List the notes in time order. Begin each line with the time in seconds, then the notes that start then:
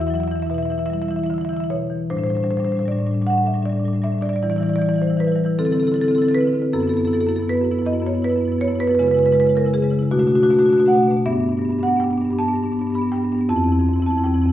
Already playing: E2 E3
0.00 E4 E5
0.07 F#3 E4 E5
0.14 E4 E5
0.20 E4 E5
0.28 E3 E4 E5
0.35 E5
0.40 E4 E5
0.47 E4 E5
0.51 B2 E4
0.58 E5
0.63 E4 E5
0.70 E3 E4 E5
0.78 E4 E5
0.86 E4 E5
0.90 G3 E4 E5
1.02 E4 E5
1.08 E3 E4 E5
1.16 E4 E5
1.24 E4 E5
1.30 D3 E5
1.34 E4
1.38 E4 E5
1.45 E5
1.49 E3 E4
1.53 E4 E5
1.60 E4 E5
1.70 B2 C#5
1.90 E3
2.10 A2 G3 D4 C5
2.17 A2 G3 D4 C5
2.23 G3 D4 C5
2.30 A2 C5
2.35 G3 D4 C5
2.40 A2 G3 D4 C5
2.50 A2 G3 D4 C5
2.57 A2 G3 D4 C5
2.65 G3 D4 C5
2.69 A2 C5
2.75 G3 D4 C5
2.81 A2 D4
2.85 G3 D5
2.91 A2 G3 D4
2.99 A2 G3 D4
3.06 G3 D4
3.11 A2 G3 D4
3.21 A2 G3 D4
3.27 G3 D4 F#5
3.33 A2
3.38 G3 D4
3.43 A2 G3 D4 E5
3.53 A2 G3 D4
3.62 A2 G3 D4 D5
3.69 G3 D4
3.75 A2 G3
3.79 D4
3.84 A2 G3 D4
3.93 A2 G3 D4
4.02 A2 G3 D4 E5
4.10 A2 G3 D4
4.18 G3 D4
4.22 A2 G3 D5
4.29 G3 D4 D5
4.36 D5
4.43 E3 G3 E4 D5
4.50 E3 G3 E4 D5
4.56 G3 E4 D5
4.60 E3 D5
4.66 E3 G3 E4 D5
4.74 G3 E4 D5
4.79 E3 E4 D5
4.86 E3 G3 E4 D5
4.94 E3 G3 E4
5.02 G3 E4 C5
5.07 E3 G3 E4
5.17 E3 G3 E4 B4
5.25 E3 G3 E4
5.32 G3 E4
5.36 E3 E4
5.44 E3 G3 E4
5.59 D3 C4 E4 A4
5.65 D3 C4 E4 A4
5.72 D3 C4 E4 A4
5.80 C4 E4 A4
5.84 D3 A4
5.88 C4 E4
5.93 D3 E4 A4
6.01 D3 C4 E4 A4
6.08 D3 C4 E4 A4
6.15 C4 E4 A4
6.19 D3 C4 A4
6.25 D3 E4 A4
6.31 C4 E4 B4
6.37 D3 C4 E4
6.45 D3 C4 E4
6.53 D3 C4 E4
6.62 D3 C4 E4
6.73 F#2 B3 E4 A4
6.80 F#2 B3 E4 A4
6.87 B3 E4 A4
6.94 F#2 E4 A4
6.99 B3 E4
7.05 F#2 B3 E4 A4
7.13 F#2 B3 E4 A4
7.21 B3 E4 A4
7.27 F#2 E4 A4
7.31 B3
7.36 F#2 B3 E4 A4
7.42 E4
7.48 F#2 B3 E4 B4
7.55 B3 E4
7.61 F#2 B3 E4
7.71 B3 E4
7.79 F#2 B3 E4
7.86 B3 E4 D#5
7.92 F#2 B3 E4
8.00 F#2 B3 E4
8.07 B3 E4 C#5
8.13 F#2 B3 E4
8.22 F#2 B3 E4 B4
8.30 B3 E4
8.36 F#2 E4
8.40 B3
8.45 F#2 B3 E4
8.52 E4
8.57 F#2 B3 E4
8.61 B3 C#5
8.68 F#2 B3 E4
8.75 F#2 E4
8.80 B3 E4 B4
8.88 F#2 B3 E4 B4
8.95 B4
8.99 C#3 G#3 E4 B4
9.07 C#3 G#3 E4
9.11 E4 B4
9.16 C#3 G#3 B4
9.23 C#3 G#3 E4 B4
9.32 C#3 G#3 E4 B4
9.40 G#3 E4 B4
9.45 C#3 E4 B4
9.50 G#3
9.55 C#3 G#3 E4 A#4
9.65 C#3 G#3 E4
9.74 C#3 G#3 E4 G#4
9.82 C#3 G#3 E4
9.90 C#3 G#3 E4
9.99 C#3 G#3 E4
10.11 B2 A3 D4 F#4
10.19 B2 A3 D4 F#4
10.27 A3 D4 F#4
10.31 B2 D4
10.35 A3 F#4
10.41 B2 A3 D4 F#4
10.50 B2 A3 D4 F#4
10.59 B2 A3 D4 F#4
10.66 A3 D4 F#4
10.70 B2 F#4
10.77 B2 A3 D4 F#4
10.85 B2 A3 D4 F#5
10.93 A3 D4
10.98 B2 A3
11.03 D4
11.08 B2 A3 D4
11.17 B2
11.26 G2 B3 D4 E5
11.33 G2 B3 D4
11.40 B3 D4
11.47 G2 D4
11.52 B3
11.58 G2 B3 D4
11.65 G2 D4
11.70 B3 D4
11.79 G2 B3 D4
11.83 F#5
11.87 G2 B3 D4
11.96 G2 B3 D4
12.00 D4 G5
12.04 B3
12.10 G2 B3 D4
12.18 G2 B3 D4
12.25 D4
12.30 G2 B3 D4
12.39 B3 D4 A5
12.43 G2
12.48 B3 D4
12.53 G2 D4
12.57 B3
12.63 G2 B3 D4
12.72 G2 B3 D4
12.79 G2 B3 D4
12.87 B3 D4
12.93 G2 D4 B5
12.98 B3 D4
13.03 G2 B3
13.09 D4 G5
13.14 G2 B3 D4
13.23 G2 B3 D4
13.32 G2 B3 D4
13.39 B3 D4
13.49 F2 C4 E4 A5
13.56 F2 C4 E4
13.64 C4 E4
13.69 F2 C4 E4
13.79 F2 C4 E4
13.86 F2 C4 E4
13.94 C4 E4
14.00 F2 C4 E4
14.06 F2 A5
14.10 C4 E4
14.18 F2 C4 E4
14.24 F2 C4 E4 G5
14.34 F2 C4 E4
14.42 C4 E4
14.46 F2 E4